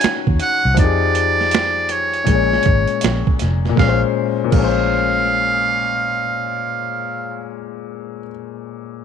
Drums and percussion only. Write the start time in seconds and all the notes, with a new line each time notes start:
0.01 finger snap, snare, closed hi-hat
0.27 kick
0.40 closed hi-hat
0.77 kick, closed hi-hat
1.15 closed hi-hat
1.41 snare
1.51 finger snap, snare, closed hi-hat
1.89 closed hi-hat
2.14 closed hi-hat
2.27 kick, closed hi-hat
2.53 snare
2.63 kick, closed hi-hat
2.87 closed hi-hat
3.01 finger snap, snare, closed hi-hat
3.27 kick
3.39 snare, closed hi-hat
3.65 snare
3.77 kick, snare
4.52 kick, crash